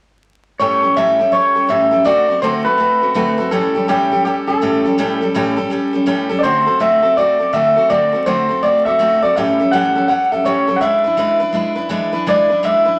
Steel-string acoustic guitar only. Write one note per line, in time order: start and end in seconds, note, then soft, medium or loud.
0.60 0.83 A2 medium
0.60 0.83 E3 medium
0.60 0.83 G3 medium
0.60 0.83 C#4 medium
0.60 0.82 G4 medium
0.60 0.80 A4 medium
0.82 0.96 G3 soft
0.82 0.96 C#4 soft
0.82 0.97 G4 soft
0.82 0.96 A4 medium
0.96 1.20 A2 medium
0.96 1.20 E3 medium
0.96 1.20 G3 medium
0.96 1.20 C#4 medium
0.96 1.19 G4 medium
0.96 1.18 A4 loud
1.19 1.31 G3 soft
1.19 1.32 C#4 soft
1.19 1.33 G4 medium
1.19 1.33 A4 medium
1.32 1.56 G3 medium
1.32 1.56 C#4 medium
1.32 1.55 G4 medium
1.32 1.54 A4 medium
1.55 1.68 G3 soft
1.55 1.69 C#4 soft
1.55 1.69 G4 soft
1.55 1.69 A4 soft
1.69 1.92 A2 medium
1.69 1.93 E3 medium
1.69 1.93 G3 medium
1.69 1.92 C#4 medium
1.69 1.91 G4 medium
1.69 1.90 A4 medium
1.91 2.05 G3 soft
1.91 2.05 C#4 medium
1.91 2.06 G4 medium
1.91 2.05 A4 medium
2.04 2.28 D3 medium
2.04 2.29 A3 medium
2.04 2.29 C4 medium
2.04 2.28 F#4 medium
2.04 2.27 A4 medium
2.28 2.42 C4 soft
2.28 2.42 F#4 soft
2.28 2.42 A4 medium
2.42 2.65 D3 medium
2.42 2.66 A3 medium
2.42 2.66 C4 medium
2.42 2.65 F#4 medium
2.42 2.63 A4 loud
2.65 2.78 C4 soft
2.65 2.79 F#4 medium
2.65 2.79 A4 medium
2.78 3.01 A3 medium
2.78 3.02 C4 medium
2.78 3.02 F#4 medium
2.78 3.00 A4 medium
3.02 3.14 C4 soft
3.02 3.15 F#4 medium
3.02 3.15 A4 soft
3.14 3.38 D3 medium
3.14 3.38 A3 loud
3.14 3.38 C4 medium
3.14 3.38 F#4 medium
3.14 3.37 A4 loud
3.38 3.52 C4 medium
3.38 3.52 F#4 medium
3.38 3.52 A4 medium
3.51 3.75 A2 medium
3.51 3.75 E3 medium
3.51 3.75 G3 medium
3.51 3.75 C#4 medium
3.51 3.74 G4 medium
3.51 3.74 A4 medium
3.75 3.88 G3 medium
3.75 3.88 C#4 soft
3.75 3.88 G4 medium
3.75 3.88 A4 medium
3.88 4.11 A2 medium
3.88 4.12 E3 medium
3.88 4.12 G3 medium
3.88 4.12 C#4 medium
3.88 4.11 G4 medium
3.88 4.10 A4 medium
4.12 4.24 G3 soft
4.12 4.25 C#4 medium
4.12 4.25 G4 medium
4.12 4.25 A4 medium
4.25 4.48 G3 medium
4.25 4.48 C#4 medium
4.25 4.47 G4 medium
4.25 4.46 A4 medium
4.47 4.61 G3 soft
4.47 4.61 C#4 medium
4.47 4.62 G4 soft
4.47 4.61 A4 medium
4.61 4.85 A2 medium
4.61 4.85 E3 medium
4.61 4.85 G3 medium
4.61 4.85 C#4 medium
4.61 4.84 G4 medium
4.61 4.83 A4 medium
4.84 4.97 G3 soft
4.84 4.98 C#4 medium
4.84 4.98 G4 medium
4.84 4.98 A4 medium
4.98 5.21 A2 medium
4.98 5.21 E3 loud
4.98 5.21 G3 medium
4.98 5.21 C#4 loud
4.98 5.21 G4 loud
4.98 5.20 A4 medium
5.21 5.34 G3 medium
5.21 5.34 C#4 medium
5.21 5.35 G4 medium
5.21 5.34 A4 medium
5.34 5.58 A2 medium
5.34 5.58 E3 medium
5.34 5.58 G3 medium
5.34 5.57 C#4 loud
5.34 5.56 G4 loud
5.34 5.55 A4 loud
5.57 5.69 G3 soft
5.57 5.70 C#4 medium
5.57 5.71 G4 medium
5.57 5.70 A4 medium
5.70 5.94 G3 medium
5.70 5.94 C#4 medium
5.70 5.93 G4 medium
5.70 5.92 A4 medium
5.93 6.05 G3 soft
5.93 6.06 C#4 medium
5.93 6.06 G4 medium
5.93 6.07 A4 medium
6.06 6.30 A2 medium
6.06 6.30 E3 medium
6.06 6.30 G3 medium
6.06 6.30 C#4 loud
6.06 6.29 G4 medium
6.06 6.28 A4 loud
6.29 6.43 G3 medium
6.29 6.43 C#4 medium
6.29 6.44 G4 medium
6.29 6.43 A4 medium
6.43 6.67 D3 medium
6.43 6.67 A3 medium
6.43 6.67 C4 medium
6.43 6.66 F#4 medium
6.43 6.65 A4 medium
6.66 6.79 C4 soft
6.66 6.80 F#4 medium
6.66 6.80 A4 medium
6.79 7.03 D3 medium
6.79 7.03 A3 medium
6.79 7.04 C4 medium
6.79 7.03 F#4 medium
6.79 7.01 A4 medium
7.02 7.16 C4 soft
7.02 7.17 F#4 medium
7.02 7.16 A4 medium
7.17 7.40 A3 medium
7.17 7.40 C4 medium
7.17 7.40 F#4 medium
7.17 7.38 A4 medium
7.39 7.53 C4 soft
7.39 7.53 F#4 soft
7.39 7.53 A4 soft
7.53 7.76 D3 medium
7.53 7.77 A3 medium
7.53 7.77 C4 medium
7.53 7.77 F#4 medium
7.53 7.75 A4 medium
7.76 7.89 C4 medium
7.76 7.90 F#4 medium
7.76 7.90 A4 medium
7.90 8.13 D3 medium
7.90 8.13 A3 medium
7.90 8.13 C4 medium
7.90 8.13 F#4 medium
7.90 8.11 A4 medium
8.12 8.26 C4 soft
8.12 8.27 F#4 medium
8.12 8.26 A4 medium
8.26 8.49 D3 medium
8.26 8.50 A3 medium
8.26 8.50 C4 medium
8.26 8.49 F#4 medium
8.26 8.48 A4 medium
8.49 8.63 C4 soft
8.49 8.63 F#4 soft
8.49 8.62 A4 medium
8.63 8.86 A3 medium
8.63 8.86 C4 medium
8.63 8.87 F#4 medium
8.63 8.85 A4 medium
8.86 8.99 C4 soft
8.86 8.99 F#4 medium
8.86 8.99 A4 medium
8.99 9.22 D3 medium
8.99 9.22 A3 medium
8.99 9.23 C4 medium
8.99 9.23 F#4 medium
8.99 9.21 A4 medium
9.22 9.37 C4 medium
9.22 9.36 F#4 medium
9.22 9.36 A4 medium
9.36 9.59 A2 medium
9.36 9.59 E3 medium
9.36 9.60 G3 medium
9.36 9.60 C#4 medium
9.36 9.60 G4 medium
9.36 9.58 A4 medium
9.59 9.72 G3 soft
9.59 9.72 C#4 soft
9.59 9.72 G4 medium
9.59 9.72 A4 medium
9.73 9.95 A2 medium
9.73 9.95 E3 medium
9.73 9.96 G3 medium
9.73 9.96 C#4 medium
9.73 9.95 G4 medium
9.73 9.94 A4 medium
9.96 10.07 G3 soft
9.96 10.08 C#4 medium
9.96 10.09 G4 soft
9.96 10.09 A4 medium
10.08 10.31 G3 medium
10.08 10.32 C#4 medium
10.08 10.32 G4 medium
10.08 10.31 A4 medium
10.32 10.45 G3 soft
10.32 10.45 C#4 soft
10.32 10.46 G4 soft
10.32 10.45 A4 medium
10.45 10.68 A2 medium
10.45 10.69 E3 medium
10.45 10.69 G3 medium
10.45 10.68 C#4 medium
10.45 10.67 G4 medium
10.45 10.66 A4 medium
10.68 10.81 G3 medium
10.68 10.82 C#4 medium
10.68 10.82 G4 medium
10.68 10.81 A4 medium
10.81 11.04 E3 medium
10.81 11.05 G#3 medium
10.81 11.05 D4 medium
10.81 11.05 E4 medium
10.81 11.03 B4 medium
11.04 11.17 D4 soft
11.04 11.17 E4 soft
11.04 11.18 B4 medium
11.17 11.40 E3 medium
11.17 11.41 G#3 medium
11.17 11.41 D4 medium
11.17 11.40 E4 medium
11.17 11.39 B4 medium
11.40 11.52 D4 medium
11.40 11.53 E4 medium
11.40 11.54 B4 medium
11.52 11.77 G#3 medium
11.52 11.77 D4 medium
11.52 11.76 E4 medium
11.52 11.74 B4 medium
11.75 11.89 D4 soft
11.75 11.89 E4 medium
11.75 11.90 B4 medium
11.89 12.13 E3 medium
11.89 12.13 G#3 medium
11.89 12.14 D4 loud
11.89 12.13 E4 medium
11.89 12.11 B4 medium
12.13 12.26 D4 soft
12.13 12.27 E4 medium
12.13 12.27 B4 medium
12.27 12.50 E3 medium
12.27 12.50 G#3 medium
12.27 12.50 D4 medium
12.27 12.50 E4 medium
12.27 12.48 B4 medium
12.49 12.63 D4 soft
12.49 12.63 E4 soft
12.49 12.63 B4 soft
12.63 12.86 E3 medium
12.63 12.87 G#3 medium
12.63 12.87 D4 medium
12.63 12.86 E4 medium
12.63 12.84 B4 medium
12.85 12.99 D4 soft
12.85 12.99 E4 medium
12.85 12.99 B4 medium